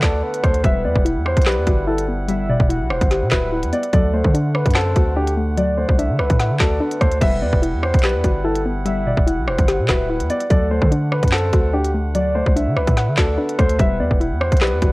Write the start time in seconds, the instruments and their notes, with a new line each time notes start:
Already playing: accordion D3 A3 F#5
0.02 808-style bass D2, grand piano A4, soft synth lead D5, kick, snare, clap, closed hi-hat
0.23 soft synth lead B4
0.34 closed hi-hat
0.43 808-style bass D2, soft synth lead A4, grand piano C5, kick, cross-stick, closed hi-hat
0.54 closed hi-hat
0.63 808-style bass E1, accordion G3 E4, synth pluck G3, soft synth lead B4, grand piano E5, kick, closed hi-hat
0.85 808-style bass E2, synth pluck B3, grand piano D5
0.96 808-style bass E1, kick
1.05 synth pluck E4, closed hi-hat
1.16 808-style bass E2
1.25 grand piano C5, cross-stick
1.37 808-style bass B1, kick, closed hi-hat
1.42 closed hi-hat
1.46 synth pluck G4, grand piano B4, soft synth lead D5, snare, clap, closed hi-hat
1.52 closed hi-hat
1.57 808-style bass E2
1.67 808-style bass G1, synth pluck F#4, kick, closed hi-hat
1.87 synth pluck E4, grand piano A4
1.98 closed hi-hat
2.08 synth pluck B3
2.28 synth pluck G3, grand piano E5, soft synth lead E5, closed hi-hat
2.49 synth pluck B2, grand piano D5
2.60 808-style bass E1, kick
2.69 synth pluck E4, soft synth lead F#5, closed hi-hat
2.81 808-style bass B1
2.90 808-style bass E1, grand piano C5, cross-stick
3.01 808-style bass G1, kick, closed hi-hat
3.11 synth pluck G4, snare, closed hi-hat
3.22 808-style bass B2
3.31 808-style bass D1, synth pluck F#4, grand piano B4, soft synth lead E5, kick, snare, clap, closed hi-hat
3.52 synth pluck E4
3.63 808-style bass E2, closed hi-hat
3.73 synth pluck B3, grand piano D5, closed hi-hat
3.83 closed hi-hat
3.92 808-style bass D2, accordion D3 A3, synth pluck F#3, soft synth lead A4, grand piano D5, kick, closed hi-hat
4.13 synth pluck A3, grand piano C5
4.24 808-style bass D3, kick
4.34 synth pluck D4, closed hi-hat
4.55 grand piano B4, cross-stick
4.66 808-style bass F#2, kick, closed hi-hat
4.70 closed hi-hat
4.75 grand piano A4, soft synth lead C5, synth pluck F#5, snare, clap, closed hi-hat
4.81 closed hi-hat
4.96 808-style bass D2, synth pluck F#4, kick, closed hi-hat
5.16 synth pluck D4, grand piano G4
5.27 closed hi-hat
5.37 synth pluck A3
5.57 synth pluck F#3, grand piano D5, soft synth lead D5, closed hi-hat
5.77 synth pluck A3, grand piano C5
5.89 808-style bass C2, kick
5.98 synth pluck D4, soft synth lead E5, closed hi-hat
6.09 808-style bass D3
6.19 808-style bass C2, grand piano B4, cross-stick
6.30 808-style bass A2, kick, closed hi-hat
6.40 synth pluck F#5, snare, closed hi-hat
6.50 808-style bass D3
6.60 808-style bass D2, synth pluck F#4, grand piano A4, soft synth lead D5, kick, snare, clap, closed hi-hat
6.80 synth pluck D4, soft synth lead B4
6.91 closed hi-hat
7.01 808-style bass D2, synth pluck A3, soft synth lead A4, grand piano C5, kick, cross-stick, closed hi-hat
7.12 closed hi-hat
7.21 808-style bass E1, accordion G3 E4 F#5, synth pluck G3, soft synth lead B4, grand piano E5, kick, closed hi-hat, crash
7.42 808-style bass E2, synth pluck B3, grand piano D5
7.53 808-style bass E1, kick
7.62 synth pluck E4, closed hi-hat
7.74 808-style bass E2
7.83 grand piano C5, cross-stick
7.94 808-style bass B1, kick, closed hi-hat
7.99 closed hi-hat
8.04 synth pluck G4, grand piano B4, soft synth lead D5, snare, clap, closed hi-hat
8.09 closed hi-hat
8.15 808-style bass E2
8.24 808-style bass G1, synth pluck F#4, kick, closed hi-hat
8.45 synth pluck E4, grand piano A4
8.56 closed hi-hat
8.66 synth pluck B3
8.86 synth pluck G3, grand piano E5, soft synth lead E5, closed hi-hat
9.07 synth pluck B2, grand piano D5
9.17 808-style bass E1, kick
9.27 synth pluck E4, soft synth lead F#5, closed hi-hat
9.38 808-style bass B1
9.48 808-style bass E1, grand piano C5, cross-stick
9.59 808-style bass G1, kick, closed hi-hat
9.68 synth pluck G4, snare, closed hi-hat
9.79 808-style bass B2
9.89 808-style bass D1, synth pluck F#4, grand piano B4, soft synth lead E5, kick, snare, clap, closed hi-hat
10.10 synth pluck E4
10.20 808-style bass E2, closed hi-hat
10.30 synth pluck B3, grand piano D5, closed hi-hat
10.41 closed hi-hat
10.50 808-style bass D2, accordion D3 A3, synth pluck F#3, soft synth lead A4, grand piano D5, kick, closed hi-hat
10.71 synth pluck A3, grand piano C5
10.82 808-style bass D3, kick
10.92 synth pluck D4, closed hi-hat
11.12 grand piano B4, cross-stick
11.23 808-style bass F#2, kick, closed hi-hat
11.28 closed hi-hat
11.32 grand piano A4, soft synth lead C5, synth pluck F#5, snare, clap, closed hi-hat
11.38 closed hi-hat
11.53 808-style bass D2, synth pluck F#4, kick, closed hi-hat
11.73 synth pluck D4, grand piano G4
11.85 closed hi-hat
11.94 synth pluck A3
12.15 synth pluck F#3, grand piano D5, soft synth lead D5, closed hi-hat
12.35 synth pluck A3, grand piano C5
12.46 808-style bass C2, kick
12.56 synth pluck D4, soft synth lead E5, closed hi-hat
12.67 808-style bass D3
12.76 808-style bass C2, grand piano B4, cross-stick
12.87 808-style bass A2, kick, closed hi-hat
12.97 synth pluck F#5, snare, closed hi-hat
13.08 808-style bass D3
13.17 808-style bass D2, synth pluck F#4, grand piano A4, soft synth lead D5, kick, snare, clap, closed hi-hat
13.38 synth pluck D4, soft synth lead B4
13.49 closed hi-hat
13.58 808-style bass D2, synth pluck A3, soft synth lead A4, grand piano C5, kick, cross-stick, closed hi-hat
13.69 closed hi-hat
13.78 808-style bass E1, accordion G3 E4, synth pluck G3, soft synth lead B4, grand piano E5, kick, closed hi-hat
13.99 808-style bass E2, synth pluck B3, grand piano D5
14.11 808-style bass E1, kick
14.20 synth pluck E4, closed hi-hat
14.31 808-style bass E2
14.40 grand piano C5, cross-stick
14.52 808-style bass B1, kick, closed hi-hat
14.57 closed hi-hat
14.61 synth pluck G4, grand piano B4, soft synth lead D5, snare, clap, closed hi-hat
14.67 closed hi-hat
14.72 808-style bass E2
14.82 808-style bass G1, synth pluck F#4, kick, closed hi-hat